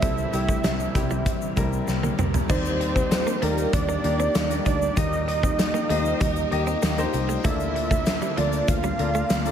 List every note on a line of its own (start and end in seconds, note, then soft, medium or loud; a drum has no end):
0.00 0.25 C2 loud
0.00 0.60 C3 medium
0.00 2.46 C3 medium
0.00 2.46 E3 medium
0.00 0.02 G3 medium
0.00 2.46 G3 medium
0.00 0.21 G3 medium
0.00 2.46 A#3 medium
0.00 0.02 C4 medium
0.00 0.21 C4 medium
0.00 0.12 C4 medium
0.00 2.46 D4 medium
0.00 0.03 E4 medium
0.00 0.21 E4 medium
0.00 0.22 A4 medium
0.00 2.52 C5 medium
0.00 1.89 E5 loud
0.00 kick loud
0.00 closed hi-hat medium
0.00 shaker medium
0.18 shaker soft
0.33 0.56 C2 medium
0.33 0.71 G3 medium
0.33 0.71 C4 medium
0.33 0.71 E4 medium
0.33 0.71 G4 medium
0.33 muted clean electric guitar stroke soft
0.33 closed hi-hat medium
0.33 shaker soft
0.49 0.58 A3 medium
0.49 kick medium
0.49 shaker medium
0.64 0.87 C2 medium
0.64 0.74 G3 medium
0.64 snare loud
0.64 closed hi-hat medium
0.64 shaker medium
0.80 muted clean electric guitar stroke soft
0.80 shaker soft
0.95 1.29 C2 medium
0.95 1.32 G3 medium
0.95 1.33 C4 medium
0.95 1.33 E4 medium
0.95 1.33 G4 medium
0.95 kick medium
0.95 closed hi-hat medium
0.95 shaker soft
1.11 1.20 G3 medium
1.11 shaker soft
1.26 kick medium
1.26 closed hi-hat medium
1.26 shaker medium
1.42 shaker soft
1.56 1.79 C2 loud
1.56 2.13 G3 medium
1.56 1.66 A3 medium
1.56 2.13 C4 medium
1.56 2.13 E4 medium
1.56 2.14 A#4 medium
1.56 kick medium
1.56 closed hi-hat medium
1.56 shaker medium
1.73 shaker soft
1.88 2.10 C2 loud
1.88 muted clean electric guitar stroke soft
1.88 snare medium
1.88 shaker medium
2.03 2.13 A#3 medium
2.03 high tom medium
2.03 shaker medium
2.19 2.41 C2 medium
2.19 2.28 C4 medium
2.19 mid tom medium
2.19 shaker soft
2.34 floor tom medium
2.34 shaker medium
2.49 3.23 D#2 medium
2.49 3.39 D#3 medium
2.49 7.41 G3 medium
2.49 3.06 A#3 medium
2.49 9.51 A#3 medium
2.49 3.06 D#4 medium
2.49 2.59 D#4 medium
2.49 7.41 D#4 medium
2.49 9.51 F4 medium
2.49 7.41 G4 medium
2.49 3.06 G4 medium
2.49 3.44 C5 loud
2.49 3.06 D5 medium
2.49 kick loud
2.49 crash medium
2.49 shaker medium
2.65 shaker soft
2.80 muted clean electric guitar stroke soft
2.80 closed hi-hat medium
2.96 3.05 C4 medium
2.96 kick medium
2.96 shaker medium
3.11 muted clean electric guitar stroke soft
3.11 snare loud
3.11 closed hi-hat medium
3.11 tambourine medium
3.11 shaker medium
3.27 3.36 A#3 medium
3.27 shaker soft
3.42 3.65 D#2 medium
3.42 3.51 A3 medium
3.42 3.80 A#3 medium
3.42 3.80 D#4 medium
3.42 3.80 G4 medium
3.42 3.73 A#4 medium
3.42 3.80 D5 medium
3.42 closed hi-hat medium
3.58 closed hi-hat soft
3.58 shaker soft
3.73 3.96 D#2 loud
3.73 4.62 D5 loud
3.73 kick loud
3.73 closed hi-hat medium
3.73 shaker medium
3.89 3.98 A#3 medium
3.89 shaker soft
4.04 4.27 D#2 loud
4.04 4.32 A#3 medium
4.04 4.32 D#4 medium
4.04 4.33 G4 medium
4.04 4.33 D5 medium
4.04 muted clean electric guitar stroke soft
4.04 closed hi-hat medium
4.20 4.29 C4 medium
4.20 shaker soft
4.35 4.58 D#2 loud
4.35 snare loud
4.35 closed hi-hat medium
4.35 tambourine medium
4.35 shaker medium
4.50 4.79 A#3 medium
4.50 4.79 D#4 medium
4.50 4.79 G4 medium
4.50 4.79 D5 medium
4.50 closed hi-hat medium
4.50 shaker medium
4.66 4.88 D2 medium
4.66 4.75 D#4 medium
4.66 4.99 D5 loud
4.66 kick medium
4.66 closed hi-hat medium
4.66 shaker soft
4.82 shaker soft
4.97 5.71 D#2 loud
4.97 5.86 D#3 medium
4.97 5.53 A#3 medium
4.97 5.06 D#4 medium
4.97 5.53 D#4 medium
4.97 5.54 G4 medium
4.97 5.28 D#5 loud
4.97 5.54 D#5 medium
4.97 kick loud
4.97 closed hi-hat medium
4.97 shaker medium
5.13 shaker soft
5.28 7.10 D#5 loud
5.28 muted clean electric guitar stroke soft
5.28 closed hi-hat medium
5.43 5.53 C4 medium
5.43 kick medium
5.43 shaker medium
5.59 muted clean electric guitar stroke soft
5.59 snare loud
5.59 closed hi-hat medium
5.59 tambourine medium
5.59 shaker medium
5.74 5.83 A#3 medium
5.74 shaker soft
5.89 6.12 D#2 loud
5.89 5.99 A3 medium
5.89 6.27 A#3 medium
5.89 6.27 D#4 medium
5.89 6.28 G4 medium
5.89 6.19 C5 loud
5.89 6.28 D#5 medium
5.89 closed hi-hat medium
6.05 shaker soft
6.21 6.43 D#2 loud
6.21 6.30 G3 medium
6.21 6.52 A#4 loud
6.21 kick loud
6.21 closed hi-hat medium
6.21 shaker medium
6.36 shaker soft
6.51 6.74 D#2 loud
6.51 6.80 A#3 medium
6.51 6.80 D#4 medium
6.51 6.80 G4 medium
6.51 6.80 D#5 medium
6.51 muted clean electric guitar stroke soft
6.51 closed hi-hat medium
6.67 6.76 C4 medium
6.67 shaker soft
6.82 7.05 D#2 loud
6.82 6.92 A#3 medium
6.82 7.26 G4 medium
6.82 snare loud
6.82 closed hi-hat medium
6.82 tambourine medium
6.82 shaker medium
6.98 7.26 A#3 medium
6.98 7.26 D#4 medium
6.98 7.26 G4 medium
6.98 7.27 C5 loud
6.98 closed hi-hat medium
6.98 shaker medium
7.13 7.36 C2 medium
7.13 muted clean electric guitar stroke soft
7.13 closed hi-hat medium
7.13 shaker soft
7.29 7.38 A3 medium
7.29 shaker medium
7.44 8.18 D2 loud
7.44 8.33 D3 medium
7.44 9.51 D3 medium
7.44 8.01 A#3 medium
7.44 7.54 A#3 medium
7.44 9.51 A#3 medium
7.44 9.51 C4 medium
7.44 9.51 D4 medium
7.44 8.01 F4 medium
7.44 9.51 F4 medium
7.44 8.01 A4 medium
7.44 8.01 D5 medium
7.44 8.39 E5 medium
7.44 9.51 A5 medium
7.44 kick loud
7.44 closed hi-hat medium
7.44 shaker medium
7.60 shaker soft
7.76 muted clean electric guitar stroke soft
7.76 closed hi-hat medium
7.91 8.00 A3 medium
7.91 kick medium
7.91 shaker medium
8.06 muted clean electric guitar stroke soft
8.06 snare loud
8.06 closed hi-hat medium
8.06 tambourine medium
8.06 shaker medium
8.22 8.31 G3 medium
8.22 shaker soft
8.37 8.60 D2 loud
8.37 8.47 F3 medium
8.37 8.75 A#3 medium
8.37 8.75 F4 medium
8.37 8.75 A4 medium
8.37 8.70 D5 medium
8.37 8.75 D5 medium
8.37 closed hi-hat loud
8.53 closed hi-hat medium
8.53 shaker soft
8.68 8.91 D2 loud
8.68 9.51 F5 loud
8.68 kick loud
8.68 closed hi-hat medium
8.68 shaker medium
8.83 8.93 G3 medium
8.83 shaker soft
8.98 9.22 D2 loud
8.98 9.27 A#3 medium
8.98 9.27 F4 medium
8.98 9.27 A4 medium
8.98 9.28 D5 medium
8.98 muted clean electric guitar stroke soft
8.98 closed hi-hat medium
9.15 9.24 A3 medium
9.15 shaker soft
9.30 9.51 D2 loud
9.30 snare loud
9.30 closed hi-hat medium
9.30 tambourine medium
9.30 shaker medium
9.45 9.51 A#3 medium
9.45 9.51 F4 medium
9.45 9.51 A4 medium
9.45 9.51 D5 medium
9.45 closed hi-hat medium
9.45 shaker medium